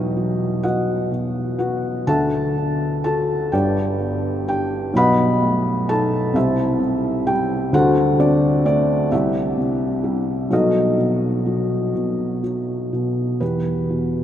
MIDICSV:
0, 0, Header, 1, 2, 480
1, 0, Start_track
1, 0, Tempo, 956938
1, 1043, Time_signature, 6, 3, 24, 8
1, 2480, Tempo, 927357
1, 5360, Tempo, 966184
1, 7213, End_track
2, 0, Start_track
2, 0, Title_t, "Felt piano"
2, 0, Program_c, 0, 0
2, 0, Control_c, 0, 64, 127
2, 0, Note_on_c, 0, 35, 53
2, 0, Note_on_c, 0, 47, 66
2, 0, Note_on_c, 0, 59, 43
2, 0, Note_on_c, 0, 63, 53
2, 0, Note_on_c, 0, 66, 54
2, 0, Note_on_c, 0, 71, 57
2, 0, Note_on_c, 0, 75, 77
2, 84, Note_on_c, 0, 54, 45
2, 300, Note_off_c, 0, 63, 0
2, 300, Note_off_c, 0, 66, 0
2, 300, Note_off_c, 0, 71, 0
2, 315, Note_off_c, 0, 75, 0
2, 316, Note_off_c, 0, 59, 0
2, 318, Note_on_c, 0, 78, 74
2, 323, Note_on_c, 0, 59, 42
2, 323, Note_on_c, 0, 75, 51
2, 326, Note_on_c, 0, 66, 48
2, 552, Note_off_c, 0, 47, 0
2, 559, Note_on_c, 0, 47, 43
2, 779, Note_off_c, 0, 78, 0
2, 781, Note_off_c, 0, 75, 0
2, 783, Note_off_c, 0, 66, 0
2, 787, Note_off_c, 0, 59, 0
2, 795, Note_on_c, 0, 59, 47
2, 796, Note_on_c, 0, 78, 61
2, 804, Note_on_c, 0, 66, 55
2, 1026, Note_off_c, 0, 35, 0
2, 1026, Note_off_c, 0, 54, 0
2, 1029, Note_off_c, 0, 66, 0
2, 1030, Note_off_c, 0, 47, 0
2, 1034, Note_off_c, 0, 59, 0
2, 1038, Note_on_c, 0, 50, 63
2, 1039, Note_off_c, 0, 78, 0
2, 1039, Note_on_c, 0, 81, 93
2, 1040, Note_on_c, 0, 38, 50
2, 1046, Note_on_c, 0, 69, 64
2, 1046, Note_on_c, 0, 78, 61
2, 1048, Control_c, 0, 64, 0
2, 1048, Note_on_c, 0, 76, 61
2, 1140, Control_c, 0, 64, 127
2, 1293, Note_on_c, 0, 62, 43
2, 1511, Note_off_c, 0, 78, 0
2, 1512, Note_off_c, 0, 69, 0
2, 1512, Note_off_c, 0, 76, 0
2, 1518, Note_off_c, 0, 81, 0
2, 1526, Note_on_c, 0, 81, 84
2, 1532, Note_on_c, 0, 66, 48
2, 1533, Note_on_c, 0, 69, 67
2, 1747, Note_off_c, 0, 50, 0
2, 1748, Note_off_c, 0, 38, 0
2, 1754, Note_off_c, 0, 69, 0
2, 1758, Note_off_c, 0, 62, 0
2, 1764, Note_off_c, 0, 66, 0
2, 1766, Note_on_c, 0, 79, 68
2, 1768, Note_on_c, 0, 31, 57
2, 1771, Note_on_c, 0, 43, 63
2, 1772, Note_on_c, 0, 67, 53
2, 1773, Note_on_c, 0, 71, 53
2, 1773, Note_on_c, 0, 74, 58
2, 1775, Note_off_c, 0, 81, 0
2, 1777, Control_c, 0, 64, 0
2, 1880, Control_c, 0, 64, 127
2, 2003, Note_on_c, 0, 59, 44
2, 2226, Note_off_c, 0, 67, 0
2, 2227, Note_off_c, 0, 71, 0
2, 2227, Note_off_c, 0, 74, 0
2, 2242, Note_off_c, 0, 79, 0
2, 2246, Note_on_c, 0, 62, 53
2, 2250, Note_on_c, 0, 79, 82
2, 2255, Note_on_c, 0, 67, 53
2, 2461, Note_off_c, 0, 31, 0
2, 2462, Note_off_c, 0, 43, 0
2, 2465, Note_off_c, 0, 59, 0
2, 2471, Note_off_c, 0, 67, 0
2, 2475, Note_off_c, 0, 62, 0
2, 2476, Note_on_c, 0, 35, 58
2, 2482, Note_on_c, 0, 47, 64
2, 2488, Control_c, 0, 64, 0
2, 2491, Note_on_c, 0, 83, 93
2, 2492, Note_off_c, 0, 79, 0
2, 2494, Note_on_c, 0, 78, 66
2, 2496, Note_on_c, 0, 71, 71
2, 2497, Note_on_c, 0, 75, 74
2, 2562, Control_c, 0, 64, 127
2, 2727, Note_on_c, 0, 57, 42
2, 2951, Note_off_c, 0, 78, 0
2, 2952, Note_off_c, 0, 71, 0
2, 2953, Note_off_c, 0, 75, 0
2, 2967, Note_on_c, 0, 63, 53
2, 2970, Note_on_c, 0, 81, 93
2, 2973, Note_on_c, 0, 69, 68
2, 2985, Note_off_c, 0, 83, 0
2, 3181, Note_off_c, 0, 35, 0
2, 3184, Note_off_c, 0, 47, 0
2, 3192, Note_off_c, 0, 57, 0
2, 3192, Note_off_c, 0, 69, 0
2, 3198, Note_off_c, 0, 63, 0
2, 3198, Note_on_c, 0, 48, 58
2, 3201, Note_on_c, 0, 36, 57
2, 3212, Control_c, 0, 64, 0
2, 3212, Note_on_c, 0, 64, 59
2, 3212, Note_on_c, 0, 76, 76
2, 3214, Note_off_c, 0, 81, 0
2, 3214, Note_on_c, 0, 67, 51
2, 3217, Note_on_c, 0, 72, 60
2, 3306, Control_c, 0, 64, 127
2, 3432, Note_off_c, 0, 48, 0
2, 3440, Note_on_c, 0, 48, 55
2, 3664, Note_off_c, 0, 64, 0
2, 3665, Note_off_c, 0, 67, 0
2, 3667, Note_off_c, 0, 72, 0
2, 3683, Note_on_c, 0, 55, 55
2, 3683, Note_on_c, 0, 79, 81
2, 3688, Note_on_c, 0, 67, 62
2, 3699, Note_off_c, 0, 76, 0
2, 3898, Note_off_c, 0, 36, 0
2, 3905, Note_off_c, 0, 48, 0
2, 3907, Note_off_c, 0, 67, 0
2, 3915, Note_off_c, 0, 55, 0
2, 3920, Note_on_c, 0, 38, 66
2, 3921, Note_on_c, 0, 50, 68
2, 3927, Control_c, 0, 64, 0
2, 3928, Note_on_c, 0, 66, 69
2, 3928, Note_on_c, 0, 78, 95
2, 3929, Note_off_c, 0, 79, 0
2, 3929, Note_on_c, 0, 69, 68
2, 3930, Note_on_c, 0, 72, 67
2, 4020, Control_c, 0, 64, 127
2, 4147, Note_off_c, 0, 66, 0
2, 4147, Note_off_c, 0, 78, 0
2, 4148, Note_off_c, 0, 69, 0
2, 4148, Note_off_c, 0, 72, 0
2, 4163, Note_on_c, 0, 60, 50
2, 4164, Note_on_c, 0, 74, 76
2, 4166, Note_on_c, 0, 62, 57
2, 4385, Note_off_c, 0, 62, 0
2, 4395, Note_off_c, 0, 74, 0
2, 4400, Note_on_c, 0, 57, 57
2, 4402, Note_on_c, 0, 74, 87
2, 4408, Note_on_c, 0, 62, 63
2, 4616, Note_off_c, 0, 38, 0
2, 4617, Note_off_c, 0, 50, 0
2, 4625, Note_off_c, 0, 60, 0
2, 4625, Note_off_c, 0, 62, 0
2, 4631, Note_off_c, 0, 57, 0
2, 4640, Note_on_c, 0, 48, 61
2, 4641, Note_on_c, 0, 76, 78
2, 4643, Note_on_c, 0, 36, 57
2, 4643, Note_on_c, 0, 67, 59
2, 4644, Control_c, 0, 64, 0
2, 4645, Note_on_c, 0, 64, 55
2, 4646, Note_off_c, 0, 74, 0
2, 4736, Control_c, 0, 64, 127
2, 4869, Note_off_c, 0, 48, 0
2, 4876, Note_on_c, 0, 48, 48
2, 5117, Note_on_c, 0, 55, 58
2, 5342, Note_off_c, 0, 36, 0
2, 5342, Note_off_c, 0, 67, 0
2, 5343, Note_off_c, 0, 64, 0
2, 5345, Note_off_c, 0, 48, 0
2, 5352, Note_off_c, 0, 55, 0
2, 5358, Note_on_c, 0, 35, 54
2, 5358, Note_on_c, 0, 47, 63
2, 5366, Control_c, 0, 64, 0
2, 5366, Note_on_c, 0, 63, 59
2, 5366, Note_on_c, 0, 69, 53
2, 5368, Note_on_c, 0, 66, 55
2, 5372, Note_on_c, 0, 75, 71
2, 5382, Note_off_c, 0, 76, 0
2, 5447, Control_c, 0, 64, 127
2, 5585, Note_off_c, 0, 47, 0
2, 5593, Note_on_c, 0, 47, 41
2, 5834, Note_on_c, 0, 54, 55
2, 6069, Note_off_c, 0, 47, 0
2, 6077, Note_on_c, 0, 47, 48
2, 6301, Note_off_c, 0, 63, 0
2, 6301, Note_off_c, 0, 69, 0
2, 6302, Note_off_c, 0, 66, 0
2, 6305, Note_off_c, 0, 75, 0
2, 6309, Note_off_c, 0, 54, 0
2, 6316, Note_on_c, 0, 54, 48
2, 6555, Note_off_c, 0, 47, 0
2, 6562, Note_on_c, 0, 47, 48
2, 6781, Note_off_c, 0, 35, 0
2, 6786, Note_off_c, 0, 54, 0
2, 6795, Note_off_c, 0, 47, 0
2, 6798, Note_on_c, 0, 71, 65
2, 6803, Note_on_c, 0, 40, 50
2, 6804, Note_on_c, 0, 67, 46
2, 6808, Control_c, 0, 64, 0
2, 6883, Control_c, 0, 64, 127
2, 7046, Note_on_c, 0, 47, 41
2, 7213, Note_off_c, 0, 40, 0
2, 7213, Note_off_c, 0, 47, 0
2, 7213, Note_off_c, 0, 67, 0
2, 7213, Note_off_c, 0, 71, 0
2, 7213, End_track
0, 0, End_of_file